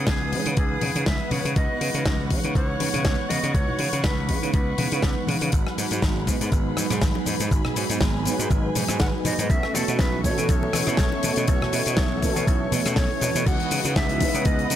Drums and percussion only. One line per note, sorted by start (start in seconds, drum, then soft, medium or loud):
0.07 kick loud
0.07 snare loud
0.07 closed hi-hat medium
0.33 open hi-hat medium
0.46 closed hi-hat medium
0.57 kick loud
0.57 closed hi-hat medium
0.81 open hi-hat loud
0.81 high conga medium
0.81 low conga medium
0.96 closed hi-hat medium
1.06 kick loud
1.06 snare loud
1.06 closed hi-hat medium
1.31 open hi-hat medium
1.31 high conga medium
1.31 low conga medium
1.45 closed hi-hat medium
1.56 kick loud
1.56 closed hi-hat medium
1.81 open hi-hat loud
1.94 closed hi-hat medium
2.06 kick loud
2.06 snare loud
2.06 closed hi-hat medium
2.30 kick medium
2.30 open hi-hat loud
2.44 closed hi-hat medium
2.55 kick loud
2.55 closed hi-hat medium
2.80 open hi-hat loud
2.80 high conga medium
2.94 closed hi-hat medium
2.94 low conga medium
3.05 kick loud
3.05 snare loud
3.05 closed hi-hat medium
3.30 open hi-hat loud
3.30 high conga medium
3.44 closed hi-hat medium
3.55 kick loud
3.55 closed hi-hat medium
3.69 low conga medium
3.79 open hi-hat loud
3.93 closed hi-hat medium
4.04 kick loud
4.04 snare loud
4.04 closed hi-hat medium
4.29 kick medium
4.29 open hi-hat loud
4.43 closed hi-hat medium
4.53 kick loud
4.53 closed hi-hat medium
4.78 open hi-hat loud
4.78 high conga medium
4.78 low conga medium
4.92 closed hi-hat medium
5.02 kick loud
5.02 snare loud
5.02 closed hi-hat medium
5.27 open hi-hat medium
5.27 high conga loud
5.27 low conga medium
5.41 closed hi-hat medium
5.52 kick loud
5.52 closed hi-hat medium
5.52 cabasa soft
5.67 cross-stick medium
5.78 open hi-hat loud
5.78 cabasa medium
5.91 closed hi-hat medium
5.91 muted conga soft
5.91 cabasa medium
6.02 kick loud
6.02 snare loud
6.02 closed hi-hat medium
6.02 cabasa soft
6.27 kick medium
6.27 open hi-hat loud
6.27 muted conga medium
6.27 cabasa medium
6.41 closed hi-hat medium
6.41 cabasa medium
6.52 kick loud
6.52 closed hi-hat medium
6.52 cabasa medium
6.77 cross-stick medium
6.77 open hi-hat loud
6.77 muted conga soft
6.77 high conga medium
6.77 cabasa medium
6.90 cross-stick medium
6.90 closed hi-hat medium
6.90 low conga medium
6.90 cabasa medium
7.01 kick loud
7.01 snare loud
7.01 closed hi-hat medium
7.01 cabasa medium
7.15 muted conga medium
7.26 open hi-hat medium
7.26 high conga medium
7.26 cabasa medium
7.40 closed hi-hat medium
7.40 cabasa medium
7.51 kick loud
7.51 closed hi-hat medium
7.51 cabasa soft
7.65 cross-stick medium
7.65 muted conga soft
7.65 low conga medium
7.76 open hi-hat loud
7.76 cabasa medium
7.90 closed hi-hat medium
7.90 cabasa medium
8.01 kick loud
8.01 snare loud
8.01 closed hi-hat medium
8.01 muted conga medium
8.01 cabasa medium
8.25 open hi-hat loud
8.25 cabasa medium
8.40 closed hi-hat medium
8.40 cabasa medium
8.51 kick loud
8.51 closed hi-hat medium
8.51 muted conga soft
8.51 cabasa soft
8.75 open hi-hat loud
8.75 high conga medium
8.75 low conga medium
8.75 cabasa medium
8.88 cross-stick medium
8.88 closed hi-hat medium
8.88 muted conga medium
8.88 cabasa medium
9.00 kick loud
9.00 snare loud
9.00 closed hi-hat medium
9.00 cabasa soft
9.24 open hi-hat loud
9.24 high conga medium
9.24 low conga medium
9.24 cabasa medium
9.38 closed hi-hat medium
9.38 muted conga soft
9.38 cabasa medium
9.50 kick loud
9.50 closed hi-hat medium
9.50 cabasa soft
9.63 cross-stick medium
9.75 open hi-hat loud
9.75 muted conga medium
9.75 cabasa medium
9.88 closed hi-hat medium
9.88 cabasa medium
9.99 kick loud
9.99 snare loud
9.99 closed hi-hat medium
9.99 cabasa soft
10.24 kick medium
10.24 open hi-hat medium
10.24 muted conga medium
10.24 cabasa medium
10.38 closed hi-hat medium
10.38 cabasa medium
10.49 kick loud
10.49 closed hi-hat medium
10.49 cabasa medium
10.63 muted conga medium
10.73 cross-stick medium
10.73 open hi-hat loud
10.73 high conga medium
10.73 cabasa loud
10.87 cross-stick medium
10.87 closed hi-hat medium
10.87 low conga medium
10.87 cabasa medium
10.97 kick loud
10.97 snare loud
10.97 closed hi-hat medium
10.97 cabasa soft
11.12 muted conga medium
11.23 open hi-hat loud
11.23 high conga medium
11.23 cabasa medium
11.36 closed hi-hat medium
11.36 cabasa medium
11.48 kick loud
11.48 closed hi-hat medium
11.48 muted conga medium
11.48 cabasa medium
11.62 cross-stick medium
11.62 low conga medium
11.73 open hi-hat loud
11.73 cabasa medium
11.86 closed hi-hat medium
11.86 cabasa medium
11.97 kick loud
11.97 snare loud
11.97 closed hi-hat medium
11.97 muted conga soft
11.97 cabasa soft
12.23 kick medium
12.23 open hi-hat loud
12.23 cabasa medium
12.36 closed hi-hat medium
12.36 muted conga medium
12.36 cabasa medium
12.47 kick loud
12.47 closed hi-hat medium
12.47 cabasa soft
12.72 open hi-hat loud
12.72 high conga medium
12.72 low conga medium
12.72 cabasa medium
12.85 cross-stick medium
12.85 closed hi-hat medium
12.85 muted conga medium
12.85 cabasa medium
12.96 kick loud
12.96 snare loud
12.96 open hi-hat medium
12.96 cabasa soft
13.21 open hi-hat loud
13.21 muted conga medium
13.21 high conga medium
13.21 low conga medium
13.21 cabasa medium
13.36 closed hi-hat medium
13.36 cabasa medium
13.46 kick loud
13.46 closed hi-hat medium
13.46 crash medium
13.46 cabasa soft
13.60 closed hi-hat soft
13.71 open hi-hat loud
13.71 cabasa medium
13.84 closed hi-hat medium
13.84 muted conga soft
13.84 cabasa medium
13.96 kick loud
13.96 snare loud
13.96 closed hi-hat medium
13.96 cabasa medium
14.09 closed hi-hat medium
14.21 kick medium
14.21 open hi-hat loud
14.21 muted conga medium
14.21 cabasa medium
14.34 closed hi-hat medium
14.34 cabasa medium
14.45 kick loud
14.45 closed hi-hat medium
14.45 cabasa soft
14.59 closed hi-hat soft
14.70 open hi-hat loud
14.70 muted conga medium
14.70 cabasa loud